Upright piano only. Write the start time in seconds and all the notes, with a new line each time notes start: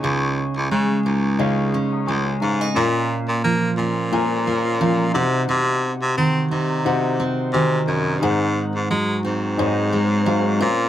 Already playing: D#4 G#4 C#5 G#5
1.39 D#4 G#4 C#5 F5
1.92 A#5 D#6
2.07 G#5 C#6
2.41 F5 A#5
2.60 D#5 G#5
2.74 C#4 F4 A#4 F5
4.12 C#4 F4 A#4 G#5
4.80 C#4 F4 A#4 F5
5.13 D#4 F#4 C5 F#5
6.84 D#4 F#4 C5 F#5
7.53 D#4 F#4 C5 G#5
8.21 D#4 G#4 C5 F#5
9.58 D#4 G#4 C5 C#5
9.66 D#5
10.26 D#4 G#4 C5 F5
10.60 C#4 A#4 C5 F5